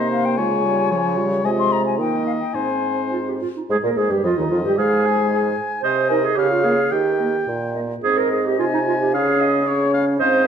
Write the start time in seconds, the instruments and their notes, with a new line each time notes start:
Already playing: bassoon C3, french horn A#3, clarinet D#4, oboe C5, flute D#5
0.11 flute F5
0.25 flute G5
0.37 bassoon C#3, french horn G#3, clarinet F4, oboe C#5, flute G#5
0.65 french horn G3
0.91 french horn F3, oboe C#5
1.17 french horn G3
1.44 bassoon C3, french horn G#3, clarinet F4, oboe D#5, flute G#5
1.59 flute C6
1.72 flute A#5
1.86 flute G#5
1.98 bassoon D#3, french horn A#3, clarinet D#4, oboe D#5, flute G5
2.26 flute F5
2.40 flute G5
2.53 bassoon G#2, french horn C4, clarinet D#4, oboe C5, flute G#5
3.12 clarinet F4
3.28 clarinet G4
3.41 clarinet F4
3.57 clarinet D#4
3.70 bassoon G#2, french horn G#3, flute G#4, clarinet G#4
3.83 bassoon A#2, french horn A#3, flute A#4, clarinet A#4
3.97 bassoon G#2, french horn G#3, flute G#4, clarinet G#4
4.10 bassoon G2, french horn G3, clarinet G4, flute G4
4.24 bassoon F2, french horn F3, flute F4, clarinet F4, oboe D#5
4.38 bassoon D#2, french horn D#3, flute D#4, clarinet D#4
4.50 bassoon F2, french horn F3, clarinet F4, flute F4
4.64 bassoon G2, french horn G3, flute G4, clarinet G4
4.76 bassoon G#2, french horn G#3, flute G#4, clarinet G#4, oboe F5
5.06 oboe G#5
5.83 bassoon C3, clarinet C5, oboe D#5
6.09 french horn D#4, clarinet A#4, flute G#5
6.24 clarinet G#4
6.36 bassoon C#3, clarinet G4, oboe F5
6.50 clarinet F4
6.63 french horn A#3, clarinet G#4, flute F5
6.91 bassoon D#3, clarinet G4, oboe G5
7.18 french horn A#3, flute D#5
7.47 bassoon A#2
7.74 french horn A#3, flute D#5
8.02 bassoon G#2, french horn C4, clarinet G#4, flute D#5
8.17 clarinet A#4
8.32 clarinet G#4
8.46 clarinet G4
8.59 bassoon C3, french horn D#4, clarinet F4, oboe G#5
8.74 clarinet D#4
8.87 clarinet F4
9.01 clarinet G4
9.13 bassoon C#3, french horn C#4, clarinet G#4, flute F5, oboe F5
9.39 oboe D#5, flute F5
9.66 french horn C#4, flute C#5, oboe C#5
9.93 oboe F5
10.19 bassoon G#2, french horn C4, clarinet C5, oboe D#5, flute F5